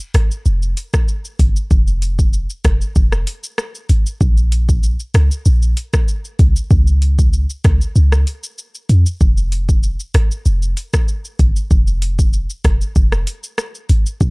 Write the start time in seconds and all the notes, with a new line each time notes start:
0.00 shaker
0.14 G#1, cross-stick, closed hi-hat, shaker
0.31 shaker
0.46 F1, shaker
0.62 shaker
0.77 closed hi-hat, shaker
0.94 kick, cross-stick, shaker
1.08 shaker
1.25 shaker
1.39 G1, kick, closed hi-hat, shaker
1.56 shaker
1.71 F1, kick, shaker
1.87 shaker
2.02 closed hi-hat, shaker
2.19 kick, shaker
2.33 shaker
2.50 shaker
2.64 F1, kick, cross-stick, closed hi-hat, shaker
2.81 shaker
2.96 F1, kick, shaker
3.12 cross-stick, shaker
3.27 closed hi-hat, shaker
3.44 shaker
3.58 cross-stick, shaker
3.75 shaker
3.89 G#1, closed hi-hat, shaker
4.06 shaker
4.21 A#1, kick, shaker
4.37 shaker
4.52 closed hi-hat, shaker
4.69 kick, shaker
4.83 shaker
5.00 shaker
5.14 C#2, cross-stick, closed hi-hat, shaker
5.31 shaker
5.46 A#1, shaker
5.62 shaker
5.77 closed hi-hat, shaker
5.93 kick, cross-stick, shaker
6.08 shaker
6.25 shaker
6.39 C2, kick, closed hi-hat, shaker
6.56 shaker
6.71 C#2, kick, shaker
6.87 shaker
7.02 closed hi-hat, shaker
7.19 kick, shaker
7.33 shaker
7.50 shaker
7.64 C#2, kick, cross-stick, closed hi-hat, shaker
7.81 shaker
7.96 C#2, shaker
8.12 cross-stick, shaker
8.27 closed hi-hat, shaker
8.43 shaker
8.58 shaker
8.75 shaker
8.89 F2, closed hi-hat, shaker
9.06 shaker
9.21 F1, kick, shaker
9.37 shaker
9.52 closed hi-hat, shaker
9.69 kick, shaker
9.83 shaker
10.00 shaker
10.14 G#1, cross-stick, closed hi-hat, shaker
10.31 shaker
10.46 F1, shaker
10.62 shaker
10.77 closed hi-hat, shaker
10.93 kick, cross-stick, shaker
11.08 shaker
11.25 shaker
11.39 G1, kick, closed hi-hat, shaker
11.56 shaker
11.71 F1, kick, shaker
11.87 shaker
12.02 closed hi-hat, shaker
12.19 kick, shaker
12.33 shaker
12.50 shaker
12.64 F1, kick, cross-stick, closed hi-hat, shaker
12.81 shaker
12.96 F1, kick, shaker
13.12 cross-stick, shaker
13.27 closed hi-hat, shaker
13.43 shaker
13.58 cross-stick, shaker
13.75 shaker
13.89 G#1, closed hi-hat, shaker
14.06 shaker
14.21 A#1, kick, shaker